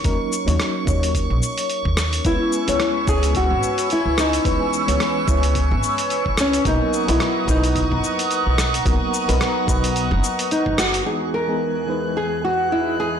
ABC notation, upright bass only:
X:1
M:4/4
L:1/16
Q:"Swing 16ths" 1/4=109
K:Elyd
V:1 name="Upright bass" clef=bass
D,, z2 D,, z2 D,,3 A,,, z3 D,,2 z | C,, z2 C,, z2 C,,3 G,,, z3 C,,2 z | C,, z2 C,, z2 C,,3 G,,, z3 C,,2 z | B,,, z2 B,,, z2 B,,,3 F,,, z3 B,,,2 z |
B,,, z2 B,,, z2 B,,,3 F,,, z3 F,,,2 z | z16 |]